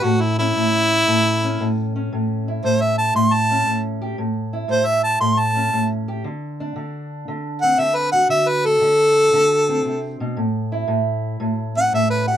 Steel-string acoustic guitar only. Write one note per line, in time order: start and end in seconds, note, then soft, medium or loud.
0.00 0.55 A2 medium
0.00 2.11 E3 medium
0.00 0.39 C#4 medium
0.00 1.81 E4 medium
0.40 1.44 C#4 medium
0.56 1.07 A2 medium
1.07 1.60 A2 medium
1.44 1.95 C#4 medium
1.60 2.12 A2 medium
1.96 3.51 C#4 medium
2.12 2.63 A2 medium
2.48 4.17 E4 medium
2.64 3.14 A2 medium
3.15 3.65 A2 medium
3.51 4.16 C#4 medium
3.66 4.16 A2 medium
4.02 4.16 G4 medium
4.18 4.67 A2 medium
4.53 6.22 E4 medium
4.68 5.19 A2 medium
5.21 5.72 A2 medium
5.56 6.22 C#4 medium
5.73 6.22 A2 medium
6.08 6.22 G4 medium
6.24 6.75 D3 medium
6.60 8.29 D4 medium
6.76 7.28 D3 medium
7.28 7.77 D3 medium
7.63 8.29 C4 medium
7.78 8.28 D3 medium
8.13 10.36 F#4 medium
8.29 8.80 D3 medium
8.66 10.35 D4 medium
8.81 9.32 D3 medium
9.33 9.85 D3 medium
9.69 10.35 C4 medium
9.85 10.20 C3 medium
10.20 10.37 B2 medium
10.37 10.86 A2 medium
10.72 12.37 E4 medium
10.88 11.39 A2 medium
11.40 11.91 A2 medium
11.77 12.37 C#4 medium
11.93 12.37 A2 medium
12.27 12.37 G4 medium